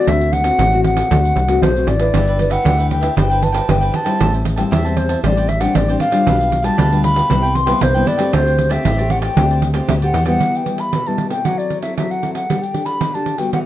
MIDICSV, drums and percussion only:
0, 0, Header, 1, 2, 480
1, 0, Start_track
1, 0, Tempo, 517241
1, 71, Time_signature, 4, 2, 24, 8
1, 12676, End_track
2, 0, Start_track
2, 0, Title_t, "Pandeiro"
2, 69, Note_on_c, 9, 54, 73
2, 162, Note_off_c, 9, 54, 0
2, 196, Note_on_c, 9, 54, 31
2, 289, Note_off_c, 9, 54, 0
2, 304, Note_on_c, 9, 54, 53
2, 397, Note_off_c, 9, 54, 0
2, 410, Note_on_c, 9, 54, 61
2, 503, Note_off_c, 9, 54, 0
2, 548, Note_on_c, 9, 54, 74
2, 641, Note_off_c, 9, 54, 0
2, 673, Note_on_c, 9, 54, 33
2, 766, Note_off_c, 9, 54, 0
2, 783, Note_on_c, 9, 54, 58
2, 876, Note_off_c, 9, 54, 0
2, 897, Note_on_c, 9, 54, 69
2, 990, Note_off_c, 9, 54, 0
2, 1035, Note_on_c, 9, 54, 80
2, 1127, Note_off_c, 9, 54, 0
2, 1162, Note_on_c, 9, 54, 34
2, 1255, Note_off_c, 9, 54, 0
2, 1266, Note_on_c, 9, 54, 53
2, 1359, Note_off_c, 9, 54, 0
2, 1378, Note_on_c, 9, 54, 64
2, 1471, Note_off_c, 9, 54, 0
2, 1513, Note_on_c, 9, 54, 84
2, 1606, Note_off_c, 9, 54, 0
2, 1636, Note_on_c, 9, 54, 32
2, 1729, Note_off_c, 9, 54, 0
2, 1741, Note_on_c, 9, 54, 60
2, 1833, Note_off_c, 9, 54, 0
2, 1852, Note_on_c, 9, 54, 61
2, 1945, Note_off_c, 9, 54, 0
2, 1985, Note_on_c, 9, 54, 79
2, 2077, Note_off_c, 9, 54, 0
2, 2112, Note_on_c, 9, 54, 32
2, 2204, Note_off_c, 9, 54, 0
2, 2219, Note_on_c, 9, 54, 57
2, 2312, Note_off_c, 9, 54, 0
2, 2327, Note_on_c, 9, 54, 59
2, 2420, Note_off_c, 9, 54, 0
2, 2467, Note_on_c, 9, 54, 79
2, 2560, Note_off_c, 9, 54, 0
2, 2596, Note_on_c, 9, 54, 35
2, 2689, Note_off_c, 9, 54, 0
2, 2700, Note_on_c, 9, 54, 59
2, 2793, Note_off_c, 9, 54, 0
2, 2810, Note_on_c, 9, 54, 61
2, 2903, Note_off_c, 9, 54, 0
2, 2944, Note_on_c, 9, 54, 81
2, 3036, Note_off_c, 9, 54, 0
2, 3073, Note_on_c, 9, 54, 32
2, 3166, Note_off_c, 9, 54, 0
2, 3178, Note_on_c, 9, 54, 55
2, 3271, Note_off_c, 9, 54, 0
2, 3289, Note_on_c, 9, 54, 66
2, 3382, Note_off_c, 9, 54, 0
2, 3423, Note_on_c, 9, 54, 82
2, 3516, Note_off_c, 9, 54, 0
2, 3550, Note_on_c, 9, 54, 33
2, 3643, Note_off_c, 9, 54, 0
2, 3655, Note_on_c, 9, 54, 59
2, 3748, Note_off_c, 9, 54, 0
2, 3767, Note_on_c, 9, 54, 63
2, 3860, Note_off_c, 9, 54, 0
2, 3902, Note_on_c, 9, 54, 83
2, 3995, Note_off_c, 9, 54, 0
2, 4028, Note_on_c, 9, 54, 34
2, 4121, Note_off_c, 9, 54, 0
2, 4133, Note_on_c, 9, 54, 62
2, 4226, Note_off_c, 9, 54, 0
2, 4246, Note_on_c, 9, 54, 60
2, 4339, Note_off_c, 9, 54, 0
2, 4388, Note_on_c, 9, 54, 83
2, 4481, Note_off_c, 9, 54, 0
2, 4510, Note_on_c, 9, 54, 36
2, 4603, Note_off_c, 9, 54, 0
2, 4609, Note_on_c, 9, 54, 60
2, 4702, Note_off_c, 9, 54, 0
2, 4726, Note_on_c, 9, 54, 64
2, 4819, Note_off_c, 9, 54, 0
2, 4860, Note_on_c, 9, 54, 79
2, 4953, Note_off_c, 9, 54, 0
2, 4986, Note_on_c, 9, 54, 32
2, 5079, Note_off_c, 9, 54, 0
2, 5092, Note_on_c, 9, 54, 57
2, 5185, Note_off_c, 9, 54, 0
2, 5204, Note_on_c, 9, 54, 65
2, 5297, Note_off_c, 9, 54, 0
2, 5337, Note_on_c, 9, 54, 82
2, 5429, Note_off_c, 9, 54, 0
2, 5468, Note_on_c, 9, 54, 32
2, 5561, Note_off_c, 9, 54, 0
2, 5568, Note_on_c, 9, 54, 58
2, 5661, Note_off_c, 9, 54, 0
2, 5681, Note_on_c, 9, 54, 68
2, 5773, Note_off_c, 9, 54, 0
2, 5820, Note_on_c, 9, 54, 84
2, 5913, Note_off_c, 9, 54, 0
2, 5945, Note_on_c, 9, 54, 33
2, 6038, Note_off_c, 9, 54, 0
2, 6053, Note_on_c, 9, 54, 56
2, 6146, Note_off_c, 9, 54, 0
2, 6164, Note_on_c, 9, 54, 64
2, 6257, Note_off_c, 9, 54, 0
2, 6300, Note_on_c, 9, 54, 81
2, 6393, Note_off_c, 9, 54, 0
2, 6425, Note_on_c, 9, 54, 34
2, 6518, Note_off_c, 9, 54, 0
2, 6533, Note_on_c, 9, 54, 64
2, 6625, Note_off_c, 9, 54, 0
2, 6646, Note_on_c, 9, 54, 65
2, 6739, Note_off_c, 9, 54, 0
2, 6778, Note_on_c, 9, 54, 74
2, 6871, Note_off_c, 9, 54, 0
2, 6902, Note_on_c, 9, 54, 33
2, 6995, Note_off_c, 9, 54, 0
2, 7009, Note_on_c, 9, 54, 55
2, 7102, Note_off_c, 9, 54, 0
2, 7118, Note_on_c, 9, 54, 66
2, 7210, Note_off_c, 9, 54, 0
2, 7250, Note_on_c, 9, 54, 81
2, 7342, Note_off_c, 9, 54, 0
2, 7381, Note_on_c, 9, 54, 34
2, 7474, Note_off_c, 9, 54, 0
2, 7488, Note_on_c, 9, 54, 62
2, 7581, Note_off_c, 9, 54, 0
2, 7598, Note_on_c, 9, 54, 66
2, 7691, Note_off_c, 9, 54, 0
2, 7734, Note_on_c, 9, 54, 84
2, 7826, Note_off_c, 9, 54, 0
2, 7864, Note_on_c, 9, 54, 35
2, 7957, Note_off_c, 9, 54, 0
2, 7967, Note_on_c, 9, 54, 56
2, 8060, Note_off_c, 9, 54, 0
2, 8080, Note_on_c, 9, 54, 66
2, 8173, Note_off_c, 9, 54, 0
2, 8213, Note_on_c, 9, 54, 86
2, 8306, Note_off_c, 9, 54, 0
2, 8340, Note_on_c, 9, 54, 36
2, 8433, Note_off_c, 9, 54, 0
2, 8445, Note_on_c, 9, 54, 55
2, 8537, Note_off_c, 9, 54, 0
2, 8557, Note_on_c, 9, 54, 68
2, 8649, Note_off_c, 9, 54, 0
2, 8694, Note_on_c, 9, 54, 83
2, 8787, Note_off_c, 9, 54, 0
2, 8825, Note_on_c, 9, 54, 30
2, 8918, Note_off_c, 9, 54, 0
2, 8928, Note_on_c, 9, 54, 58
2, 9021, Note_off_c, 9, 54, 0
2, 9037, Note_on_c, 9, 54, 62
2, 9129, Note_off_c, 9, 54, 0
2, 9173, Note_on_c, 9, 54, 79
2, 9266, Note_off_c, 9, 54, 0
2, 9299, Note_on_c, 9, 54, 34
2, 9391, Note_off_c, 9, 54, 0
2, 9410, Note_on_c, 9, 54, 60
2, 9503, Note_off_c, 9, 54, 0
2, 9519, Note_on_c, 9, 54, 62
2, 9612, Note_off_c, 9, 54, 0
2, 9654, Note_on_c, 9, 54, 68
2, 9747, Note_off_c, 9, 54, 0
2, 9789, Note_on_c, 9, 54, 27
2, 9882, Note_off_c, 9, 54, 0
2, 9893, Note_on_c, 9, 54, 48
2, 9986, Note_off_c, 9, 54, 0
2, 10005, Note_on_c, 9, 54, 51
2, 10098, Note_off_c, 9, 54, 0
2, 10141, Note_on_c, 9, 54, 67
2, 10234, Note_off_c, 9, 54, 0
2, 10268, Note_on_c, 9, 54, 27
2, 10361, Note_off_c, 9, 54, 0
2, 10376, Note_on_c, 9, 54, 50
2, 10468, Note_off_c, 9, 54, 0
2, 10491, Note_on_c, 9, 54, 54
2, 10584, Note_off_c, 9, 54, 0
2, 10625, Note_on_c, 9, 54, 71
2, 10718, Note_off_c, 9, 54, 0
2, 10756, Note_on_c, 9, 54, 28
2, 10849, Note_off_c, 9, 54, 0
2, 10861, Note_on_c, 9, 54, 45
2, 10954, Note_off_c, 9, 54, 0
2, 10974, Note_on_c, 9, 54, 53
2, 11067, Note_off_c, 9, 54, 0
2, 11113, Note_on_c, 9, 54, 69
2, 11206, Note_off_c, 9, 54, 0
2, 11241, Note_on_c, 9, 54, 29
2, 11334, Note_off_c, 9, 54, 0
2, 11349, Note_on_c, 9, 54, 47
2, 11442, Note_off_c, 9, 54, 0
2, 11461, Note_on_c, 9, 54, 58
2, 11554, Note_off_c, 9, 54, 0
2, 11599, Note_on_c, 9, 54, 71
2, 11692, Note_off_c, 9, 54, 0
2, 11724, Note_on_c, 9, 54, 29
2, 11817, Note_off_c, 9, 54, 0
2, 11826, Note_on_c, 9, 54, 48
2, 11918, Note_off_c, 9, 54, 0
2, 11934, Note_on_c, 9, 54, 49
2, 12027, Note_off_c, 9, 54, 0
2, 12071, Note_on_c, 9, 54, 68
2, 12164, Note_off_c, 9, 54, 0
2, 12199, Note_on_c, 9, 54, 28
2, 12292, Note_off_c, 9, 54, 0
2, 12305, Note_on_c, 9, 54, 49
2, 12398, Note_off_c, 9, 54, 0
2, 12420, Note_on_c, 9, 54, 52
2, 12513, Note_off_c, 9, 54, 0
2, 12556, Note_on_c, 9, 54, 67
2, 12648, Note_off_c, 9, 54, 0
2, 12676, End_track
0, 0, End_of_file